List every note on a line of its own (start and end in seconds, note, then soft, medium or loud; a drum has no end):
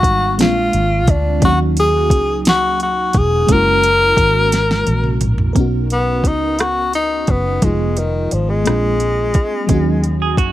0.00 0.40 G#1 medium
0.00 0.38 G3 medium
0.00 0.37 G#3 medium
0.00 0.39 B3 medium
0.00 0.39 D#4 medium
0.00 0.36 F#4 loud
0.00 0.40 F5 medium
0.00 kick medium
0.04 closed hi-hat medium
0.38 0.70 A#1 medium
0.38 1.42 G#3 medium
0.38 1.41 A#3 medium
0.38 1.42 C4 medium
0.38 1.43 D4 medium
0.38 1.43 F4 medium
0.38 snare loud
0.38 closed hi-hat medium
0.42 1.12 F4 loud
0.73 1.09 G#1 loud
0.73 closed hi-hat soft
1.07 1.39 D2 medium
1.07 1.43 D4 medium
1.07 kick medium
1.07 closed hi-hat soft
1.40 2.11 D#2 loud
1.40 3.44 F#3 medium
1.40 3.45 A#3 medium
1.40 3.46 C#4 medium
1.40 kick loud
1.40 closed hi-hat medium
1.45 3.46 D#4 medium
1.45 1.60 F#4 loud
1.45 3.47 F#4 medium
1.77 2.43 G#4 loud
1.77 closed hi-hat medium
2.10 3.10 C#2 loud
2.10 kick medium
2.10 closed hi-hat medium
2.45 2.79 F#4 loud
2.45 snare loud
2.45 closed hi-hat medium
2.80 3.19 F#4 loud
2.80 closed hi-hat soft
3.13 3.46 E1 medium
3.13 kick medium
3.13 closed hi-hat soft
3.18 3.54 G#4 loud
3.47 4.14 F#1 loud
3.47 5.51 G#3 medium
3.47 5.51 A#3 medium
3.47 5.52 C#4 medium
3.47 kick loud
3.47 closed hi-hat medium
3.52 5.53 E4 medium
3.52 5.54 F#4 medium
3.52 5.23 A#4 loud
3.84 closed hi-hat medium
4.17 4.83 G#1 loud
4.17 kick medium
4.17 closed hi-hat medium
4.52 snare medium
4.52 closed hi-hat medium
4.71 snare medium
4.87 5.18 A#1 medium
4.87 closed hi-hat soft
4.87 high tom medium
5.04 mid tom medium
5.21 5.53 A#1 medium
5.21 closed hi-hat soft
5.21 mid tom loud
5.38 floor tom medium
5.53 6.25 B1 loud
5.53 7.58 B3 medium
5.53 7.59 C#4 medium
5.53 7.57 A#4 medium
5.53 kick medium
5.53 closed hi-hat medium
5.58 7.60 D#4 medium
5.58 7.61 F#4 medium
5.90 6.29 B3 medium
5.90 closed hi-hat soft
6.24 7.24 C#2 medium
6.24 6.62 D#4 medium
6.24 kick medium
6.24 closed hi-hat soft
6.59 6.94 F#4 loud
6.59 cross-stick medium
6.59 closed hi-hat medium
6.93 7.32 D#4 medium
6.93 closed hi-hat soft
7.27 7.59 F#1 medium
7.27 7.65 B3 medium
7.27 kick medium
7.27 closed hi-hat soft
7.62 8.28 F1 loud
7.62 8.66 F3 medium
7.62 8.64 G#3 medium
7.62 8.00 G#3 medium
7.62 8.66 B3 soft
7.62 8.67 D#4 soft
7.62 8.67 F4 medium
7.62 kick medium
7.62 closed hi-hat medium
7.97 8.35 D#3 medium
7.97 closed hi-hat medium
8.31 8.63 G#1 medium
8.31 8.51 F3 medium
8.31 closed hi-hat soft
8.50 10.22 G#3 medium
8.65 9.32 A#1 medium
8.65 9.69 G#3 medium
8.65 9.67 A#3 soft
8.65 9.70 C4 medium
8.65 9.70 D4 medium
8.65 9.71 F4 medium
8.65 cross-stick medium
8.65 closed hi-hat medium
9.00 closed hi-hat soft
9.34 kick medium
9.34 closed hi-hat soft
9.67 10.38 D#2 loud
9.67 10.52 F#3 medium
9.67 10.52 A#3 medium
9.67 10.52 C#4 medium
9.67 kick medium
9.67 closed hi-hat medium
9.72 10.52 D#4 medium
9.72 10.52 F#4 medium
10.04 closed hi-hat soft
10.22 10.38 G#4 medium
10.37 10.52 F#2 medium
10.37 10.52 F#4 medium
10.37 kick medium
10.37 closed hi-hat soft